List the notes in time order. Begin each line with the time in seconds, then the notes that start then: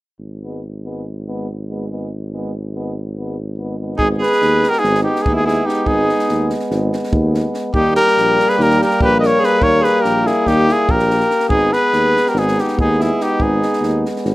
0.19 G#1
0.41 G#3 B3
0.84 G#3 B3
1.27 G#3 B3
1.69 G#3 B3
1.89 G#3 B3
2.32 G#3 B3
2.74 G#3 B3
3.17 G#3 B3
3.58 G#3 B3
3.79 G#3 B3
3.97 G#1 G#3 B3 D#4 G#4, kick
4.19 G#4 B4
4.23 snare
4.32 snare
4.41 D#2, snare
4.63 snare
4.69 G4 A#4
4.73 snare
4.79 D#4 G#4
4.84 G#1, snare
4.95 snare
5.02 D#4 G4
5.16 snare
5.22 D#4 G#4, kick
5.27 D#2
5.34 E4 G#4
5.43 E4 G#4
5.48 snare
5.66 D#4 G4, snare
5.83 G#1 D#4, kick
5.87 G#4
6.09 snare
6.19 snare
6.29 D#2, snare
6.50 snare
6.60 snare
6.70 G#1, snare
6.93 snare
7.04 snare
7.12 D#2, kick
7.34 snare
7.54 snare
7.73 D#2 G3 A#3 D#4 G4, kick
7.95 G4 A#4, snare
8.07 snare
8.17 A#1, snare
8.40 snare
8.48 G#4 B4, snare
8.57 D#2 G4, snare
8.63 A#4
8.70 snare
8.80 G4, snare
8.84 A#4
8.91 snare
9.01 A#1 G4 B4, kick
9.18 A#4 B4 D#5
9.23 snare
9.27 C#5
9.40 G#4, snare
9.45 B4
9.60 D#2 A#4 C#5, kick
9.82 G#4 B4, snare
10.01 A#1 G4 A#4, snare
10.25 E4 G#4, snare
10.46 D#2 D#4 G4, kick, snare
10.69 E4 G#4, snare
10.89 A#1 G4 A#4, kick
10.99 snare
11.10 snare
11.20 snare
11.31 snare
11.40 snare
11.48 G#1 G#3 B3 D#4 G#4, kick
11.72 G#4 B4, snare
11.93 D#2, snare
12.16 snare
12.26 G4 A#4, snare
12.34 G#1, snare
12.38 D#4 G#4
12.48 snare
12.58 D#4 G4, snare
12.68 snare
12.78 D#2 D#4 G#4, kick
12.99 E4, snare
13.04 G#4
13.20 D#4 G4, snare
13.39 G#1 D#4, kick
13.43 G#4
13.63 snare
13.73 snare
13.81 D#2, snare
14.06 snare
14.16 snare
14.24 G#1, snare